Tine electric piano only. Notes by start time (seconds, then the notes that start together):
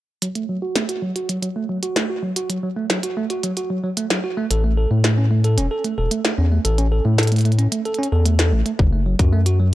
0.22 F#3
0.35 A3
0.49 F#3
0.62 F#4
0.76 A3
0.89 F#4
1.02 F#3
1.16 F#4
1.29 F#3
1.42 F#3
1.56 A3
1.69 F#3
1.83 F#4
1.96 A3
2.10 F#4
2.23 F#3
2.36 F#4
2.50 F#3
2.63 F#3
2.77 A3
2.90 F#3
3.03 F#4
3.17 A3
3.30 F#4
3.44 F#3
3.57 F#4
3.70 F#3
3.84 F#3
3.97 A3
4.10 F#3
4.24 F#4
4.37 A3
4.51 A4
4.64 A3
4.77 A4
4.91 A3
5.04 A3
5.18 C#4
5.31 A3
5.44 A4
5.58 C#4
5.71 A4
5.85 A3
5.98 A4
6.11 A3
6.25 A3
6.38 C#4
6.51 A3
6.65 A4
6.78 C#4
6.92 A4
7.05 A3
7.18 A4
7.32 A3
7.45 A3
7.59 C#4
7.72 A3
7.85 A4
7.99 C#4
8.12 A4
8.26 A3
8.39 A4
8.52 A3
8.66 A3
8.79 F#3
8.93 A3
9.06 F#3
9.19 F#4
9.33 A3
9.46 F#4
9.60 F#3